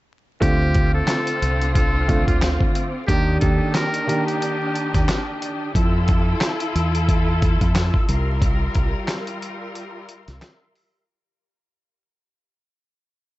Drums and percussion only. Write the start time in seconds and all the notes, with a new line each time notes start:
0.42 kick, closed hi-hat
0.74 kick, closed hi-hat
1.08 finger snap, snare, clap, closed hi-hat
1.27 closed hi-hat
1.42 closed hi-hat
1.61 closed hi-hat
1.75 kick, closed hi-hat
2.09 kick, closed hi-hat
2.28 kick, closed hi-hat
2.42 finger snap, snare, clap, closed hi-hat
2.61 kick
2.75 closed hi-hat
3.08 kick, closed hi-hat
3.41 kick, closed hi-hat
3.75 finger snap, snare, clap, closed hi-hat
3.94 closed hi-hat
4.09 closed hi-hat
4.28 closed hi-hat
4.42 closed hi-hat
4.76 closed hi-hat
4.94 kick, snare, closed hi-hat
5.08 finger snap, snare, clap, closed hi-hat
5.42 closed hi-hat
5.75 kick, closed hi-hat
6.08 kick, closed hi-hat
6.41 finger snap, snare, clap, closed hi-hat
6.60 closed hi-hat
6.76 closed hi-hat
6.95 closed hi-hat
7.09 kick, closed hi-hat
7.42 kick, closed hi-hat
7.61 kick, closed hi-hat
7.75 finger snap, snare, clap, closed hi-hat
7.94 kick
8.09 closed hi-hat
8.42 kick, closed hi-hat
8.75 kick, closed hi-hat
9.08 finger snap, snare, clap, closed hi-hat
9.27 closed hi-hat
9.42 closed hi-hat
9.75 closed hi-hat
10.09 closed hi-hat
10.28 snare, closed hi-hat
10.42 finger snap, snare, clap, closed hi-hat
10.75 open hi-hat